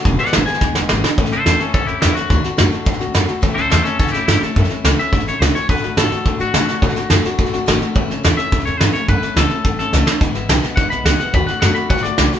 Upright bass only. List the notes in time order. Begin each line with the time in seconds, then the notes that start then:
0.06 E1
0.20 muted upright bass stroke
0.35 G#1
0.48 muted upright bass stroke
0.62 D2
0.77 E1
0.91 G#1
1.05 muted upright bass stroke
1.18 A1
1.33 C#2
1.46 E2
1.61 muted upright bass stroke
1.74 C#2
1.90 E2
2.04 E2
2.18 muted upright bass stroke
2.30 D2
2.45 muted upright bass stroke
2.60 F#2
2.73 muted upright bass stroke
2.87 B1
3.01 D2
3.15 F#2
3.30 muted upright bass stroke
3.43 A1
3.58 C#2
3.72 E2
3.87 muted upright bass stroke
4.00 C#2
4.14 E2
4.28 G2
4.42 muted upright bass stroke
4.57 F#2
4.71 muted upright bass stroke
4.84 C#2
4.99 muted upright bass stroke
5.13 G1
5.27 A1
5.41 C#2
5.55 muted upright bass stroke
5.70 D2
5.82 F#2
5.97 A2
6.11 muted upright bass stroke
6.26 F#2
6.39 A2
6.54 B2
6.68 muted upright bass stroke
6.82 B2
6.97 muted upright bass stroke
7.10 F#2
7.24 muted upright bass stroke
7.39 B1
7.53 D2
7.67 G#1
7.81 muted upright bass stroke
7.96 A1
8.10 C#2
8.25 E2
8.39 muted upright bass stroke
8.53 C#2
8.66 E2
8.81 G2
8.94 muted upright bass stroke
9.09 F#2
9.23 muted upright bass stroke
9.36 C#2
9.51 muted upright bass stroke
9.65 G1
9.79 A1
9.93 C#2
10.08 muted upright bass stroke
10.21 E1
10.35 G#1
10.49 B1
10.63 muted upright bass stroke
10.77 G#1
10.92 B1
11.05 C#2
11.20 muted upright bass stroke
11.34 D2
11.48 muted upright bass stroke
11.62 F#2
11.75 muted upright bass stroke
11.91 B1
12.04 D2
12.18 B1
12.32 muted upright bass stroke